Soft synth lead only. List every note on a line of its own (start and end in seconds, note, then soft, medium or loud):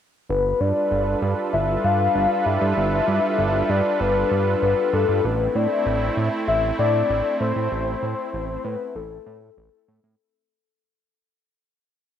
0.29 0.62 B4 loud
0.60 1.22 D5 loud
1.53 1.86 E5 loud
1.84 2.47 F5 loud
2.46 3.71 E5 loud
3.70 4.02 D5 loud
4.00 4.62 B4 loud
4.62 4.95 B4 medium
4.93 5.26 A4 medium
5.25 5.57 B4 loud
5.55 6.17 D5 loud
6.48 6.62 E5 loud
6.79 7.37 D5 loud
7.41 8.66 C5 loud
8.65 8.97 B4 loud
8.95 9.88 A4 medium